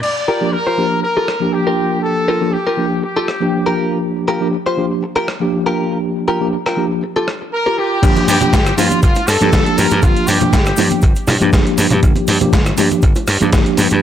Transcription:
0.03 D5, crash
0.28 F4 G4 A#4
0.41 F3 A#3 D4 G4
0.53 A#4
0.67 F4 G4 C5
0.78 F3 A#3 D4 G4
1.03 A#4, muted clean electric guitar stroke
1.17 F4 G4 A4
1.28 cross-stick
1.40 F3 A#3 D4 G4, muted clean electric guitar stroke
1.53 G4
1.67 F4 G4 A#4
2.03 A4
2.28 F4 G4 A#4
2.41 F3 A#3 D4 G4
2.53 G4
2.67 F4 G4 A#4
2.77 F3 A#3 D4 G4
3.02 G4, muted clean electric guitar stroke
3.16 F4 G4 A4
3.28 cross-stick
3.40 F3 A#3 D4 G4, muted clean electric guitar stroke
3.66 F4 G4 A#4
4.28 F4 G4 A#4
4.41 F3 A#3 D4 G4
4.66 F4 G4 C5
4.77 F3 A#3 D4 G4
5.03 muted clean electric guitar stroke
5.16 F4 G4 A#4
5.28 cross-stick
5.40 F3 A#3 D4 G4, muted clean electric guitar stroke
5.66 F4 G4 A#4
6.28 F4 G4 A#4
6.41 F3 A#3 D4 G4
6.66 F4 G4 A#4, cross-stick
6.77 F3 A#3 D4 G4
7.03 muted clean electric guitar stroke
7.16 F4 G4 A4
7.28 cross-stick
7.41 muted clean electric guitar stroke
7.54 A#4
7.66 F4 G4 A#4
7.78 F4 G4 A#4
8.02 G1 F3 A#3 D4 G4, kick, closed hi-hat, crash, cabasa
8.16 closed hi-hat, high conga
8.28 G2 G4, open hi-hat, cabasa
8.41 F3 A#3 D4 G4, muted slap bass stroke, closed hi-hat, low conga, cabasa
8.53 G1, kick, snare, closed hi-hat, cabasa
8.66 cross-stick, closed hi-hat, cabasa
8.77 G2 F3 A#3 D4 F4 G4, open hi-hat, high bongo, cabasa
8.91 closed hi-hat, high conga, cabasa
9.03 G1 F4, kick, closed hi-hat, cabasa
9.15 closed hi-hat, high bongo, cabasa
9.27 G2 A4, cross-stick, open hi-hat, cabasa
9.40 G2 F3 A#3 D4 G4, closed hi-hat, cabasa
9.53 G1, kick, snare, closed hi-hat, cabasa
9.66 closed hi-hat
9.77 G2 A#4, open hi-hat, high bongo, cabasa
9.91 G2, closed hi-hat, cabasa
10.02 G1 F4, kick, closed hi-hat, cabasa
10.16 closed hi-hat
10.27 G2 G4, open hi-hat, cabasa
10.41 F3 A#3 D4 G4, muted slap bass stroke, closed hi-hat, low conga, cabasa
10.53 G1, kick, snare, closed hi-hat, cabasa
10.66 cross-stick, closed hi-hat, cabasa
10.77 G2 F3 A#3 D4 G4, open hi-hat, high bongo, cabasa
10.91 closed hi-hat, high conga, cabasa
11.01 G1, kick, closed hi-hat, cabasa
11.16 closed hi-hat, cabasa
11.27 G2, cross-stick, open hi-hat, high bongo, low conga, cabasa
11.40 G2 F3 A#3 D4 G4, closed hi-hat, cabasa
11.53 G1, kick, snare, closed hi-hat, cabasa
11.67 closed hi-hat
11.78 G2, open hi-hat, cabasa
11.90 G2, closed hi-hat, low conga, cabasa
12.03 G1, kick, closed hi-hat, cabasa
12.15 closed hi-hat, high conga
12.27 G2, open hi-hat, cabasa
12.41 F3 A#3 D4 G4, muted slap bass stroke, closed hi-hat, low conga, cabasa
12.53 G1, kick, snare, closed hi-hat, cabasa
12.66 cross-stick, closed hi-hat, cabasa
12.77 G2 F3 A#3 D4 G4, open hi-hat, high bongo, cabasa
12.91 closed hi-hat, high conga, cabasa
13.02 G1, kick, closed hi-hat, cabasa
13.15 closed hi-hat, high bongo, cabasa
13.27 G2, cross-stick, open hi-hat, cabasa
13.40 G2 F3 A#3 D4 G4, closed hi-hat, cabasa
13.52 G1, kick, snare, closed hi-hat, cabasa
13.66 closed hi-hat
13.77 G2, open hi-hat, high bongo, cabasa
13.90 G2, closed hi-hat, cabasa

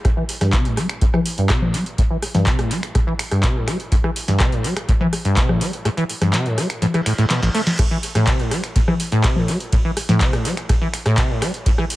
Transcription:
0.05 A2, kick, cross-stick, closed hi-hat
0.17 E3
0.29 open hi-hat
0.41 G2, cross-stick, snare, closed hi-hat
0.53 C3, kick, clap, closed hi-hat
0.65 A2, closed hi-hat
0.77 G3, cross-stick, open hi-hat
0.89 finger snap, closed hi-hat
1.01 A2, kick, closed hi-hat
1.14 E3, cross-stick, low conga
1.26 open hi-hat
1.38 G2, closed hi-hat
1.50 C3, kick, cross-stick, clap, closed hi-hat
1.62 A2, low conga
1.74 G3, open hi-hat
1.86 closed hi-hat
1.98 A2, kick, closed hi-hat
2.10 E3
2.22 cross-stick, open hi-hat
2.35 G2, snare, closed hi-hat, low conga
2.46 C3, kick, clap, closed hi-hat
2.59 A2, cross-stick, closed hi-hat
2.71 G3, open hi-hat
2.83 finger snap, closed hi-hat
2.95 A2, kick, cross-stick, closed hi-hat
3.07 E3
3.19 finger snap, open hi-hat
3.31 G2, cross-stick, closed hi-hat
3.43 C3, kick, clap, closed hi-hat
3.56 A2
3.67 G3, finger snap, cross-stick, open hi-hat
3.80 closed hi-hat
3.92 A2, kick, closed hi-hat
4.04 E3, cross-stick
4.16 open hi-hat
4.28 G2, snare, closed hi-hat
4.40 C3, kick, cross-stick, clap, closed hi-hat
4.52 A2, closed hi-hat
4.64 G3, open hi-hat
4.77 finger snap, cross-stick, closed hi-hat
4.88 A2, kick, closed hi-hat
5.01 E3, low conga
5.13 cross-stick, open hi-hat
5.25 G2, closed hi-hat
5.37 C3, kick, clap, closed hi-hat
5.49 A2, cross-stick, low conga
5.61 G3, open hi-hat
5.73 closed hi-hat
5.85 A2, cross-stick, closed hi-hat
5.97 E3, closed hi-hat
6.09 open hi-hat
6.21 G2, cross-stick, snare, closed hi-hat, low conga
6.33 C3, snare, clap, closed hi-hat
6.46 A2, closed hi-hat
6.58 G3, cross-stick, open hi-hat
6.70 finger snap, closed hi-hat
6.82 A2, closed hi-hat, reverse cymbal, low conga
6.94 E3, cross-stick, closed hi-hat
7.06 A2, finger snap, open hi-hat
7.18 A2, closed hi-hat
7.30 B2, snare, clap, closed hi-hat
7.43 A1, snare
7.55 A3, open hi-hat
7.67 snare, closed hi-hat
7.79 A2, kick, cross-stick, closed hi-hat, ride, crash
7.91 E3
8.03 open hi-hat
8.15 A2, cross-stick, snare, closed hi-hat
8.27 C3, kick, clap, closed hi-hat, ride
8.39 A2, closed hi-hat
8.51 G3, cross-stick, open hi-hat
8.64 finger snap, closed hi-hat
8.76 A2, kick, closed hi-hat, ride
8.88 E3, cross-stick, low conga
9.00 open hi-hat
9.12 A2, closed hi-hat
9.24 C3, kick, cross-stick, clap, closed hi-hat, ride
9.36 A2, low conga
9.48 G3, open hi-hat
9.60 closed hi-hat
9.72 A2, kick, closed hi-hat, ride
9.85 E3
9.97 cross-stick, open hi-hat
10.09 A2, snare, closed hi-hat, low conga
10.21 C3, kick, clap, closed hi-hat, ride
10.33 A2, cross-stick, closed hi-hat
10.45 G3, open hi-hat
10.57 finger snap, closed hi-hat
10.69 A2, kick, cross-stick, closed hi-hat, ride
10.81 E3
10.94 finger snap, open hi-hat
11.06 A2, cross-stick, closed hi-hat
11.18 C3, kick, clap, closed hi-hat, ride
11.30 A2
11.42 G3, finger snap, cross-stick, open hi-hat
11.54 closed hi-hat
11.66 A2, kick, closed hi-hat, ride
11.78 E3, cross-stick
11.90 open hi-hat

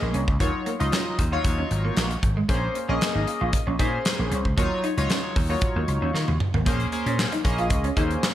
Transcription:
Already playing: A#3 C#4 G#4 D#5
0.02 A#1 A#3
0.14 C2 C#4, closed hi-hat
0.28 C#2, kick
0.40 D#2 F#3 A#3 D#4 F4 C#5, kick, closed hi-hat
0.66 A#3, closed hi-hat
0.80 C#2 F#3 D#4 F4 D#5, muted clean electric guitar stroke, closed hi-hat
0.92 C#4, snare, clap, closed hi-hat
1.19 D#2, muted clean electric guitar stroke, kick, closed hi-hat
1.32 F#3 D#4 F4 C#5
1.44 D#2, kick, closed hi-hat
1.58 C#4
1.71 G#1, muted clean electric guitar stroke, closed hi-hat
1.85 A#3
1.97 A#1 A#3, snare, clap, closed hi-hat
2.11 muted clean electric guitar stroke, closed hi-hat
2.23 G#1, kick, closed hi-hat
2.37 G#3
2.48 A#1 A#3 C#4 G#4 C5, kick, closed hi-hat
2.75 muted clean electric guitar stroke, closed hi-hat
2.88 A#1 A#3 C#4 G#4 D#5
3.01 snare, clap, closed hi-hat
3.15 G#1 D#4
3.27 muted clean electric guitar stroke, closed hi-hat
3.41 A#1 F4
3.53 muted clean electric guitar stroke, kick, closed hi-hat
3.67 A#1 C#4
3.79 A#2 A#3 C#4 D#4 G#4 C5, kick, closed hi-hat
4.05 muted clean electric guitar stroke, snare, clap, closed hi-hat
4.19 A#1 A#3
4.32 C2 C#4, closed hi-hat
4.45 C#2, kick
4.57 D#2 F#3 A#3 D#4 F4 C#5, kick, closed hi-hat
4.84 D#4, closed hi-hat
4.97 C#2 F#3 D#4 F4 C#5, muted clean electric guitar stroke, closed hi-hat
5.10 C#4, snare, clap, closed hi-hat
5.36 D#2, muted clean electric guitar stroke, kick, open hi-hat
5.49 F#3 A#3 D#4 F4 C#5
5.61 kick, closed hi-hat
5.76 D#2 A#3
5.88 C#2, muted clean electric guitar stroke, closed hi-hat
6.02 D#2 C#4
6.14 D#3 A#3, snare
6.28 D#2, muted clean electric guitar stroke, high tom
6.40 mid tom
6.54 G#1 A#3, floor tom
6.66 A#1 A#3 C#4 G#4 C5, kick, closed hi-hat
6.80 closed hi-hat
6.92 A#3 C#4 G#4 C5, muted clean electric guitar stroke, closed hi-hat
7.06 A#2 C#4, closed hi-hat
7.19 snare, clap
7.32 D#4, closed hi-hat
7.44 A#1 A#3 C#4 G#4 D#5, muted clean electric guitar stroke, kick, closed hi-hat
7.58 F4, closed hi-hat
7.70 C#2, muted clean electric guitar stroke, kick, closed hi-hat
7.84 C#4, closed hi-hat
7.96 D#2 A#3 C#4 D#4 G#4 C5, kick, closed hi-hat
8.11 closed hi-hat
8.23 muted clean electric guitar stroke, snare, clap

